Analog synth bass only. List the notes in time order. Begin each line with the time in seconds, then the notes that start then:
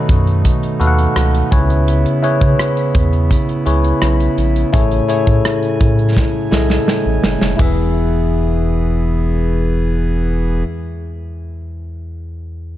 0.09 F#2
0.81 D#2
1.16 C#2
1.52 C#2
2.41 C#3
2.95 E2
3.66 C#2
4.02 B1
4.38 A#1
4.74 A1
5.27 A2
5.81 A2
6.52 B1
7.06 A1
7.24 F#1
7.41 F1
7.59 E1